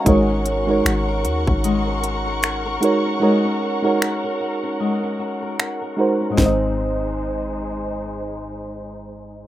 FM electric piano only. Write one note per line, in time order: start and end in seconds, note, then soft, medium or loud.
0.00 0.28 G#5 medium
0.00 0.27 C#6 medium
0.05 0.43 G#3 medium
0.05 0.43 D#4 medium
0.05 0.44 F#4 medium
0.05 0.44 A#4 medium
0.09 0.45 C#5 medium
0.67 1.63 G#3 medium
0.67 1.64 D#4 medium
0.67 1.64 F#4 medium
0.67 1.65 A#4 medium
0.67 1.65 C#5 medium
2.81 3.09 G#3 medium
2.81 3.09 D#4 medium
2.81 3.10 F#4 medium
2.81 3.10 A#4 medium
2.81 3.10 C#5 medium
3.20 3.58 G#3 medium
3.20 3.59 D#4 medium
3.20 3.59 F#4 medium
3.20 3.60 A#4 medium
3.20 3.60 C#5 medium
3.82 4.79 G#3 medium
3.82 4.79 D#4 medium
3.82 4.80 F#4 medium
3.82 4.80 A#4 medium
3.87 4.81 C#5 medium
5.97 6.24 G#3 medium
5.97 6.25 D#4 medium
5.97 6.25 F#4 medium
5.97 6.26 A#4 medium
5.97 6.26 C5 medium
6.30 9.47 G#2 medium
6.30 9.47 G#3 medium
6.38 9.47 D#4 medium
6.38 9.47 C5 medium
6.46 9.47 D#5 medium